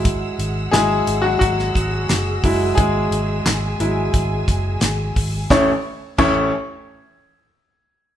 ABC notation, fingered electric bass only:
X:1
M:4/4
L:1/8
Q:1/4=88
K:A
V:1 name="Fingered electric bass" clef=bass
G,,, G,,, G,,, G,,, G,,, G,,, F,,, F,,, | G,,, G,,, G,,, G,,, G,,, F,,, G,,, G,,, | A,,, z A,,, z4 z |]